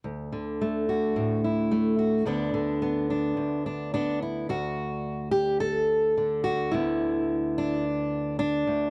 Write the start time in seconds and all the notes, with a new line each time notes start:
0.04 D2
0.32 D3
0.61 A3
0.89 F#4
1.16 A2
1.44 E4
1.71 A3
1.99 F#4
2.25 D2 D3 B3 D4
2.54 D3
2.82 B3
3.10 D4
3.37 D2
3.66 D4
3.94 B3 D4
4.22 E4
4.49 D2 F#4
5.31 G4
5.60 A4
6.17 D3
6.44 F#4
6.71 D2 D3 B3 E4
7.58 D4
8.39 D4
8.67 D2